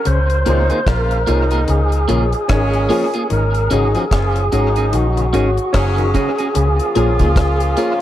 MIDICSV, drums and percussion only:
0, 0, Header, 1, 2, 480
1, 0, Start_track
1, 0, Key_signature, -5, "major"
1, 0, Tempo, 811908
1, 33, Time_signature, 4, 2, 24, 8
1, 4739, End_track
2, 0, Start_track
2, 0, Title_t, "Drums"
2, 32, Note_on_c, 9, 42, 82
2, 91, Note_off_c, 9, 42, 0
2, 176, Note_on_c, 9, 42, 45
2, 235, Note_off_c, 9, 42, 0
2, 272, Note_on_c, 9, 42, 67
2, 331, Note_off_c, 9, 42, 0
2, 412, Note_on_c, 9, 42, 49
2, 471, Note_off_c, 9, 42, 0
2, 512, Note_on_c, 9, 36, 101
2, 513, Note_on_c, 9, 42, 86
2, 518, Note_on_c, 9, 37, 104
2, 571, Note_off_c, 9, 36, 0
2, 572, Note_off_c, 9, 42, 0
2, 577, Note_off_c, 9, 37, 0
2, 656, Note_on_c, 9, 42, 48
2, 715, Note_off_c, 9, 42, 0
2, 753, Note_on_c, 9, 42, 66
2, 812, Note_off_c, 9, 42, 0
2, 891, Note_on_c, 9, 42, 51
2, 950, Note_off_c, 9, 42, 0
2, 992, Note_on_c, 9, 42, 75
2, 1051, Note_off_c, 9, 42, 0
2, 1136, Note_on_c, 9, 42, 48
2, 1195, Note_off_c, 9, 42, 0
2, 1233, Note_on_c, 9, 42, 66
2, 1293, Note_off_c, 9, 42, 0
2, 1375, Note_on_c, 9, 42, 49
2, 1434, Note_off_c, 9, 42, 0
2, 1472, Note_on_c, 9, 42, 96
2, 1475, Note_on_c, 9, 36, 105
2, 1475, Note_on_c, 9, 37, 117
2, 1531, Note_off_c, 9, 42, 0
2, 1534, Note_off_c, 9, 36, 0
2, 1534, Note_off_c, 9, 37, 0
2, 1617, Note_on_c, 9, 42, 43
2, 1676, Note_off_c, 9, 42, 0
2, 1713, Note_on_c, 9, 46, 66
2, 1772, Note_off_c, 9, 46, 0
2, 1855, Note_on_c, 9, 42, 53
2, 1914, Note_off_c, 9, 42, 0
2, 1952, Note_on_c, 9, 42, 80
2, 2011, Note_off_c, 9, 42, 0
2, 2096, Note_on_c, 9, 42, 49
2, 2155, Note_off_c, 9, 42, 0
2, 2191, Note_on_c, 9, 42, 68
2, 2250, Note_off_c, 9, 42, 0
2, 2333, Note_on_c, 9, 42, 48
2, 2392, Note_off_c, 9, 42, 0
2, 2432, Note_on_c, 9, 36, 97
2, 2434, Note_on_c, 9, 42, 82
2, 2439, Note_on_c, 9, 37, 106
2, 2491, Note_off_c, 9, 36, 0
2, 2493, Note_off_c, 9, 42, 0
2, 2498, Note_off_c, 9, 37, 0
2, 2576, Note_on_c, 9, 42, 46
2, 2635, Note_off_c, 9, 42, 0
2, 2674, Note_on_c, 9, 42, 66
2, 2733, Note_off_c, 9, 42, 0
2, 2813, Note_on_c, 9, 42, 51
2, 2872, Note_off_c, 9, 42, 0
2, 2914, Note_on_c, 9, 42, 78
2, 2973, Note_off_c, 9, 42, 0
2, 3058, Note_on_c, 9, 42, 48
2, 3118, Note_off_c, 9, 42, 0
2, 3156, Note_on_c, 9, 42, 65
2, 3215, Note_off_c, 9, 42, 0
2, 3296, Note_on_c, 9, 42, 52
2, 3355, Note_off_c, 9, 42, 0
2, 3393, Note_on_c, 9, 42, 93
2, 3395, Note_on_c, 9, 36, 109
2, 3396, Note_on_c, 9, 37, 110
2, 3452, Note_off_c, 9, 42, 0
2, 3454, Note_off_c, 9, 36, 0
2, 3455, Note_off_c, 9, 37, 0
2, 3536, Note_on_c, 9, 42, 44
2, 3596, Note_off_c, 9, 42, 0
2, 3633, Note_on_c, 9, 42, 65
2, 3634, Note_on_c, 9, 36, 62
2, 3692, Note_off_c, 9, 42, 0
2, 3693, Note_off_c, 9, 36, 0
2, 3774, Note_on_c, 9, 42, 50
2, 3834, Note_off_c, 9, 42, 0
2, 3873, Note_on_c, 9, 42, 89
2, 3932, Note_off_c, 9, 42, 0
2, 4018, Note_on_c, 9, 42, 49
2, 4077, Note_off_c, 9, 42, 0
2, 4112, Note_on_c, 9, 42, 76
2, 4171, Note_off_c, 9, 42, 0
2, 4253, Note_on_c, 9, 42, 52
2, 4256, Note_on_c, 9, 36, 68
2, 4312, Note_off_c, 9, 42, 0
2, 4315, Note_off_c, 9, 36, 0
2, 4351, Note_on_c, 9, 36, 113
2, 4354, Note_on_c, 9, 42, 85
2, 4360, Note_on_c, 9, 37, 114
2, 4410, Note_off_c, 9, 36, 0
2, 4413, Note_off_c, 9, 42, 0
2, 4419, Note_off_c, 9, 37, 0
2, 4495, Note_on_c, 9, 42, 51
2, 4554, Note_off_c, 9, 42, 0
2, 4593, Note_on_c, 9, 42, 75
2, 4652, Note_off_c, 9, 42, 0
2, 4739, End_track
0, 0, End_of_file